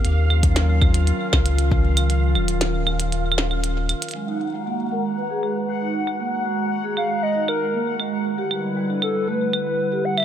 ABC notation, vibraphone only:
X:1
M:4/4
L:1/16
Q:1/4=117
K:G#dor
V:1 name="Vibraphone" clef=bass
z16 | z16 | G, D z G, A, z G, G, z G G, z G, D z G, | A, z G, G, z G G, z G, D z G, A, z G, G, |
z =G =G, z G, =D z G, =A, z G, G, z G G, z |]